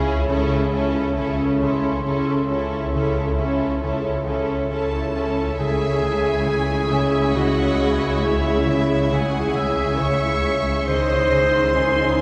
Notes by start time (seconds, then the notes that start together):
Already playing: C#2 C#3 C#4 E4 G#4 C#5 E5
0.28 C#2 C#3 C#4 E4 A4 C#5 E5
0.73 C#4 E4 A4
1.16 C#2 C#3 C#4 E4 A4
1.61 C#3 C#4 E4 A4 C6
2.05 C#2 C#3 C#4 E4 A4
2.50 C#4 E4 A4
2.93 C#2 C#3 C#4 E4 A4
3.38 C#4 E4 A4
3.82 C#2 C#3 C#4 E4 A4
4.26 C#3 C#4 E4 A4
4.70 C#2 C#3 C#4 E4 A4 A5
5.14 C#4 E4 A4
5.58 C#2 C#3 G#3 E4 G#4 C#5 E5 G#5 C#6 B6
6.04 C#3
6.47 C#3 G#5 G#6
6.90 C#3 C#5 E5 C#6
7.35 C#3 F#4 D#5 F#5
7.80 C#4
8.23 C#3 E4 C#5 E5
8.68 C#3 E5
9.11 C#3 G#4 F#5 G#5
9.55 C#3 E5 E6
10.00 C#3 C#5 C#6
10.44 C#4
10.87 C#2 C#3 D#3 D#4 C5 D#5 C6 D#6
11.32 C#3
11.76 C#3 G#5 C6